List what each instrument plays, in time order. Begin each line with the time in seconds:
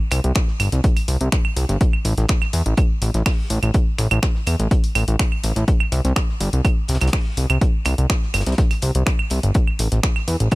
0.11 analog synth bass C2, finger snap, closed hi-hat, open hi-hat, claves
0.24 analog synth bass C2, closed hi-hat
0.35 finger snap, kick, snare, closed hi-hat
0.48 snare
0.60 analog synth bass G1, closed hi-hat, open hi-hat, claves
0.72 analog synth bass C2, snare, closed hi-hat
0.84 kick, closed hi-hat
0.97 open hi-hat, claves
1.08 analog synth bass C2, closed hi-hat, open hi-hat
1.21 analog synth bass C2, closed hi-hat
1.32 finger snap, kick, snare, closed hi-hat
1.45 claves
1.56 analog synth bass C2, closed hi-hat, open hi-hat
1.69 analog synth bass G1, snare, closed hi-hat
1.81 kick, closed hi-hat
1.93 claves
2.05 analog synth bass A1, closed hi-hat, open hi-hat
2.18 analog synth bass A1, snare, closed hi-hat
2.29 finger snap, kick, snare, closed hi-hat
2.41 snare, claves
2.53 analog synth bass E2, closed hi-hat, open hi-hat
2.66 analog synth bass A1, closed hi-hat
2.77 kick, closed hi-hat, claves
3.02 analog synth bass A1, closed hi-hat, open hi-hat
3.14 analog synth bass A1, snare, closed hi-hat
3.26 finger snap, kick, snare, closed hi-hat, open hi-hat, claves
3.50 analog synth bass A1, closed hi-hat, open hi-hat
3.63 analog synth bass A1, closed hi-hat, claves
3.74 kick, closed hi-hat
3.98 analog synth bass A1, finger snap, closed hi-hat, open hi-hat
4.11 analog synth bass A1, closed hi-hat, claves
4.23 finger snap, kick, snare, closed hi-hat
4.35 snare
4.47 analog synth bass E2, closed hi-hat, open hi-hat, claves
4.59 analog synth bass A1, snare, closed hi-hat
4.71 kick, closed hi-hat
4.84 open hi-hat
4.95 analog synth bass A1, closed hi-hat, open hi-hat, claves
5.08 analog synth bass A1, closed hi-hat
5.19 finger snap, kick, snare, closed hi-hat
5.32 claves
5.44 analog synth bass A1, closed hi-hat, open hi-hat
5.56 analog synth bass A1, snare, closed hi-hat
5.68 kick, closed hi-hat
5.80 claves
5.92 analog synth bass C2, closed hi-hat, open hi-hat
6.05 analog synth bass C2, snare, closed hi-hat
6.16 finger snap, kick, snare, closed hi-hat, claves
6.29 snare
6.41 analog synth bass G1, closed hi-hat, open hi-hat
6.53 analog synth bass C2, closed hi-hat
6.65 kick, closed hi-hat, claves
6.88 analog synth bass C2, snare, closed hi-hat, open hi-hat
6.95 snare, closed hi-hat
7.01 analog synth bass C2, snare, closed hi-hat, claves
7.07 snare, closed hi-hat
7.13 finger snap, kick, snare, closed hi-hat
7.37 analog synth bass C2, closed hi-hat, open hi-hat
7.50 analog synth bass C2, closed hi-hat, claves
7.61 kick, closed hi-hat
7.85 analog synth bass C2, finger snap, closed hi-hat, open hi-hat, claves
7.98 analog synth bass C2, closed hi-hat
8.10 finger snap, kick, snare, closed hi-hat
8.23 snare
8.34 analog synth bass G1, snare, closed hi-hat, open hi-hat, claves
8.41 snare, closed hi-hat
8.46 analog synth bass C2, snare, closed hi-hat
8.52 snare, closed hi-hat
8.58 kick, snare, closed hi-hat
8.71 snare, open hi-hat, claves
8.82 analog synth bass C2, closed hi-hat, open hi-hat
8.95 analog synth bass C2, closed hi-hat
9.06 finger snap, kick, snare, closed hi-hat
9.19 claves
9.30 analog synth bass C2, closed hi-hat, open hi-hat
9.43 analog synth bass G1, closed hi-hat
9.54 kick, closed hi-hat
9.67 claves
9.79 analog synth bass A1, closed hi-hat, open hi-hat
9.92 analog synth bass A1, snare, closed hi-hat
10.03 finger snap, kick, snare, closed hi-hat
10.16 snare, claves
10.28 analog synth bass E2, closed hi-hat, open hi-hat
10.40 analog synth bass A1, closed hi-hat
10.51 kick, closed hi-hat, claves